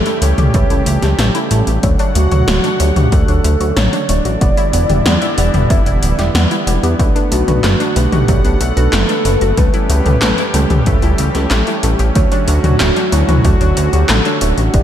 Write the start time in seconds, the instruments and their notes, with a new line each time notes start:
Already playing: analog synth pad C#3 E3 G3 A3 G4, fm electric piano G3 C#4 A4, soft synth lead A4
0.06 synth arpeggio sound E4, closed hi-hat
0.22 analog synth bass C#2, fm electric piano G3 C#4 A4, synth arpeggio sound A3, soft synth lead C#5, closed hi-hat
0.38 analog synth bass C#2, synth arpeggio sound G4, closed hi-hat, mid tom
0.54 analog synth bass C#2, fm electric piano G3 C#4 B4, synth arpeggio sound A3, kick, closed hi-hat
0.70 analog synth bass C#2, fm electric piano G3 C#4 A4, synth arpeggio sound E4, closed hi-hat
0.86 analog synth bass C#2, synth arpeggio sound A3, closed hi-hat
1.02 analog synth bass C#2, fm electric piano G3 C#4 A4, synth arpeggio sound G4, snare, closed hi-hat
1.19 analog synth bass A1, synth arpeggio sound A3, snare, closed hi-hat
1.35 fm electric piano G3 C#4 A4, synth arpeggio sound E4, closed hi-hat
1.51 analog synth bass A1, fm electric piano G3 C#4 A4, synth arpeggio sound A3, closed hi-hat
1.67 analog synth bass A1, synth arpeggio sound G4, closed hi-hat
1.83 analog synth bass D2, analog synth pad D3 F#5, fm electric piano F#3 D4 C#5, synth arpeggio sound A3, kick, closed hi-hat
1.99 fm electric piano F#3 D4 C#5, synth arpeggio sound D4, closed hi-hat
2.15 analog synth bass D2, synth arpeggio sound A3, soft synth lead F#4, closed hi-hat
2.32 analog synth bass D2, fm electric piano F#3 D4 C#5, synth arpeggio sound F#4, closed hi-hat, mid tom
2.48 analog synth bass D1, fm electric piano F#3 D4 C#5, synth arpeggio sound A3, snare, closed hi-hat
2.64 synth arpeggio sound D4, closed hi-hat
2.80 analog synth bass D2, fm electric piano F#3 D4 C#5, synth arpeggio sound A3, soft synth lead G4, closed hi-hat
2.96 analog synth bass D2, synth arpeggio sound F#4, closed hi-hat, mid tom
3.12 analog synth bass D2, fm electric piano F#3 D4 D5, synth arpeggio sound A3, soft synth lead A4, kick, closed hi-hat
3.28 analog synth bass D2, fm electric piano F#3 D4 C#5, synth arpeggio sound D4, closed hi-hat
3.44 analog synth bass D2, synth arpeggio sound A3, closed hi-hat
3.61 analog synth bass D2, fm electric piano F#3 D4 C#5, synth arpeggio sound F#4, closed hi-hat
3.76 analog synth bass A1, synth arpeggio sound A3, soft synth lead C#5, snare, closed hi-hat
3.93 fm electric piano F#3 D4 C#5, synth arpeggio sound D4, closed hi-hat
4.09 analog synth bass D1, fm electric piano F#3 D4 C#5, synth arpeggio sound A3, soft synth lead D5, closed hi-hat
4.25 analog synth bass A1, synth arpeggio sound F#4, closed hi-hat
4.41 analog synth bass E1, analog synth pad E3 G3 B3 E4, fm electric piano G3 E4 D5, synth arpeggio sound B3, kick, closed hi-hat
4.57 fm electric piano G3 E4 D5, synth arpeggio sound E4, closed hi-hat
4.73 analog synth bass E1, synth arpeggio sound B3, closed hi-hat
4.90 analog synth bass E1, fm electric piano G3 E4 D5, synth arpeggio sound G4, closed hi-hat, mid tom
5.06 analog synth bass E2, fm electric piano G3 E4 D5, synth arpeggio sound B3, snare, closed hi-hat
5.22 synth arpeggio sound E4, closed hi-hat
5.38 analog synth bass E1, fm electric piano G3 E4 D5, synth arpeggio sound B3, closed hi-hat
5.54 analog synth bass E1, synth arpeggio sound G4, closed hi-hat, mid tom
5.70 analog synth bass E1, fm electric piano G3 E4 E5, synth arpeggio sound B3, kick, closed hi-hat
5.86 analog synth bass E1, fm electric piano G3 E4 D5, synth arpeggio sound E4, closed hi-hat
6.03 analog synth bass D1, synth arpeggio sound B3, closed hi-hat
6.19 analog synth bass E1, fm electric piano G3 E4 D5, synth arpeggio sound G4, snare, closed hi-hat
6.35 analog synth bass E2, synth arpeggio sound B3, snare, closed hi-hat
6.51 fm electric piano G3 E4 D5, synth arpeggio sound E4, closed hi-hat
6.67 analog synth bass E1, fm electric piano G3 E4 D5, synth arpeggio sound B3, closed hi-hat
6.83 analog synth bass E2, synth arpeggio sound G4, closed hi-hat
6.99 analog synth bass B1, fm electric piano A3 D4 B4, synth arpeggio sound A3, analog synth pad A3 F#5, kick, closed hi-hat
7.16 fm electric piano A3 D4 B4, synth arpeggio sound D4, closed hi-hat
7.32 analog synth bass B1, synth arpeggio sound A3, soft synth lead F#4, closed hi-hat
7.48 analog synth bass B1, fm electric piano A3 D4 B4, synth arpeggio sound F#4, closed hi-hat, mid tom
7.64 analog synth bass F#1, fm electric piano A3 B4, synth arpeggio sound A3, snare, clap, closed hi-hat
7.80 synth arpeggio sound D4, closed hi-hat
7.96 analog synth bass B1, fm electric piano A3 D4 B4, synth arpeggio sound A3, soft synth lead G4, closed hi-hat
8.12 analog synth bass B1, synth arpeggio sound F#4, closed hi-hat, mid tom
8.28 analog synth bass B1, fm electric piano A3 D4 C#5, synth arpeggio sound A3, kick, closed hi-hat
8.45 analog synth bass B1, fm electric piano A3 D4 B4, synth arpeggio sound D4, closed hi-hat
8.60 analog synth bass B1, synth arpeggio sound A3, soft synth lead A4, closed hi-hat
8.77 analog synth bass B1, fm electric piano A3 D4 B4, synth arpeggio sound F#4, closed hi-hat
8.93 analog synth bass F#1, synth arpeggio sound A3, snare, clap, closed hi-hat
9.09 fm electric piano A3 D4 B4, synth arpeggio sound D4, closed hi-hat
9.25 analog synth bass F#1, synth arpeggio sound A3, fm electric piano A3 D4 B4, closed hi-hat
9.41 analog synth bass F#1, synth arpeggio sound F#4, closed hi-hat
9.57 analog synth bass C#2, analog synth pad E3 G3 C#4 G4, fm electric piano G3 C#4 A4, synth arpeggio sound A3, soft synth lead B4, kick, closed hi-hat
9.74 fm electric piano G3 C#4 A4, synth arpeggio sound E4, closed hi-hat
9.90 analog synth bass C#2, synth arpeggio sound A3, closed hi-hat
10.06 analog synth bass C#2, fm electric piano G3 C#4 A4, synth arpeggio sound G4, closed hi-hat, mid tom
10.22 analog synth bass A1, fm electric piano G3 C#4 A4, synth arpeggio sound A3, snare, clap, closed hi-hat
10.38 synth arpeggio sound E4, closed hi-hat
10.54 analog synth bass C#2, fm electric piano G3 C#4 A4, synth arpeggio sound A3, closed hi-hat
10.70 analog synth bass C#2, synth arpeggio sound G4, closed hi-hat, mid tom
10.86 analog synth bass C#2, fm electric piano G3 C#4 B4, synth arpeggio sound A3, soft synth lead A4, kick, closed hi-hat
11.02 analog synth bass C#2, fm electric piano G3 C#4 A4, synth arpeggio sound E4, closed hi-hat
11.18 analog synth bass C#2, synth arpeggio sound A3, closed hi-hat
11.35 analog synth bass C#2, fm electric piano G3 C#4 A4, synth arpeggio sound G4, snare, closed hi-hat
11.51 analog synth bass A1, synth arpeggio sound A3, snare, clap, closed hi-hat
11.67 fm electric piano G3 C#4 A4, synth arpeggio sound E4, closed hi-hat
11.83 analog synth bass A1, fm electric piano G3 C#4 A4, synth arpeggio sound A3, closed hi-hat
11.99 analog synth bass A1, synth arpeggio sound G4, closed hi-hat
12.15 analog synth bass D2, analog synth pad D3 F#3 F#4, fm electric piano F#3 D4 C#5, synth arpeggio sound A3, kick, closed hi-hat
12.32 fm electric piano F#3 D4 C#5, synth arpeggio sound D4, closed hi-hat
12.48 analog synth bass D2, synth arpeggio sound A3, soft synth lead F#4, closed hi-hat
12.64 analog synth bass D2, fm electric piano F#3 D4 C#5, synth arpeggio sound F#4, closed hi-hat, mid tom
12.80 analog synth bass D1, fm electric piano F#3 D4 C#5, synth arpeggio sound A3, snare, clap, closed hi-hat
12.96 synth arpeggio sound D4, closed hi-hat
13.12 analog synth bass D2, fm electric piano F#3 D4 C#5, synth arpeggio sound A3, soft synth lead E4, closed hi-hat
13.29 analog synth bass D2, synth arpeggio sound F#4, closed hi-hat, mid tom
13.45 analog synth bass D2, fm electric piano F#3 D4 D5, synth arpeggio sound A3, soft synth lead F#4, kick, closed hi-hat
13.61 analog synth bass D2, fm electric piano F#3 D4 C#5, synth arpeggio sound D4, closed hi-hat
13.77 analog synth bass D2, synth arpeggio sound A3, closed hi-hat
13.93 analog synth bass D2, fm electric piano F#3 D4 C#5, synth arpeggio sound F#4, soft synth lead G4, closed hi-hat
14.09 analog synth bass A1, synth arpeggio sound A3, soft synth lead A4, snare, clap, closed hi-hat
14.25 fm electric piano F#3 D4 C#5, synth arpeggio sound D4, closed hi-hat
14.41 analog synth bass D1, fm electric piano F#3 D4 C#5, synth arpeggio sound A3, closed hi-hat
14.58 analog synth bass A1, synth arpeggio sound F#4, soft synth lead F#4, closed hi-hat
14.74 analog synth bass E1, analog synth pad E3 G3 B3 E4, fm electric piano G3 E4 D5, synth arpeggio sound B3, soft synth lead G4, kick, closed hi-hat